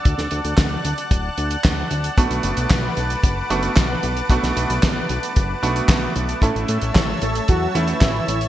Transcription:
<<
  \new Staff \with { instrumentName = "Analog synth pad" } { \time 4/4 \key b \minor \tempo 4 = 113 << { <d'' fis'''>1 | <b' d'''>1~ | <b' d'''>1 | <cis'' e'''>1 | } \\ { <fis'' a''>1~ | <fis'' a''>1~ | <fis'' a''>1 | <e'' a''>1 | } >> }
  \new Staff \with { instrumentName = "Grand piano" } { \time 4/4 \key b \minor r1 | <a b d' fis'>2~ <a b d' fis'>8 <a b d' fis'>8 r4 | <a b d' fis'>2~ <a b d' fis'>8 <a b d' fis'>4. | <a cis' e' a'>2~ <a cis' e' a'>8 <a cis' e' a'>8 r4 | }
  \new Staff \with { instrumentName = "Analog polysynth" } { \time 4/4 \key b \minor r1 | r1 | r1 | r4. <a a'>8 <fis fis'>8 <e e'>8 <e e'>8. r16 | }
  \new Staff \with { instrumentName = "Analog synth bass" } { \clef bass \time 4/4 \key b \minor d,16 d,16 d,16 d,16 d,16 r16 d,16 r16 d,,16 r16 d,16 r16 d,16 r16 d,16 r16 | b,,16 b,,16 fis,,16 b,,16 b,,16 r16 b,,16 r16 fis,,16 r16 fis,,16 r16 b,,16 r16 b,,16 r16 | b,,16 b,,16 b,,16 b,,16 b,,16 r16 b,,16 r16 fis,,16 r16 b,,16 r16 b,,16 r16 b,,16 r16 | a,,16 a,,16 a,16 a,,16 a,,16 r16 a,,16 r16 e,16 r16 e,16 r16 a,,16 r16 a,,16 r16 | }
  \new DrumStaff \with { instrumentName = "Drums" } \drummode { \time 4/4 <hh bd>16 <hh sn>16 hh16 hh16 <hc hh bd sn>8 hh16 hh16 <hh bd>8 hh16 hh16 <hc hh bd sn>8 hh16 hh16 | <hh bd>16 hh16 hh16 hh16 <hc hh bd sn>8 hh16 hh16 <hh bd>8 hh16 hh16 <hc hh bd sn>8 hh16 hh16 | <hh bd>16 <hh sn>16 hh16 hh16 <hc hh bd sn>8 hh16 hh16 <hh bd>8 hh16 hh16 <hc hh bd sn>8 hh16 hh16 | <hh bd>16 hh16 hh16 hh16 <hc hh bd sn>8 hh16 hh16 <hh bd>8 hh16 hh16 <hc hh bd sn>8 hh16 hh16 | }
>>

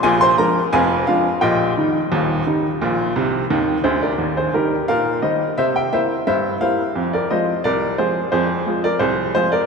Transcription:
<<
  \new Staff \with { instrumentName = "Upright piano" } { \time 2/4 \key ees \major \tempo 4 = 87 <aes' aes''>16 <c'' c'''>16 <bes' bes''>8 <aes' f'' aes''>8 <f' f''>8 | <g' ees'' g''>2~ | <g' ees'' g''>4 r8 <aes' c''>16 <bes' d''>16~ | <bes' d''>16 <aes' c''>16 <g' bes'>8 <bes' f''>8 <c'' ees''>8 |
<c'' e''>16 <e'' g''>16 <c'' e''>8 <c'' e''>8 <c'' f''>8~ | <c'' f''>16 <bes' d''>16 <c'' ees''>8 <bes' d''>8 <aes' c''>8 | <aes' c''>8. <bes' d''>16 <aes' c''>8 <aes' c''>16 <bes' d''>16 | }
  \new Staff \with { instrumentName = "Upright piano" } { \clef bass \time 2/4 \key ees \major <bes,, bes,>8 <f aes d'>8 <f,, f,>8 <f aes d'>8 | <bes,, bes,>8 <ees g ees'>8 <ees,, ees,>8 <ees g ees'>8 | <bes,, bes,>8 <c, c>8 <ees, ees>8 <d, d>8 | ees,8 <ees g ees'>8 bes,8 <ees g ees'>8 |
c8 <g bes e'>8 g,8 <g bes e'>8 | f,8 <f aes f'>8 c,8 <f aes f'>8 | f,8 <f aes f'>8 c,8 <f aes f'>8 | }
>>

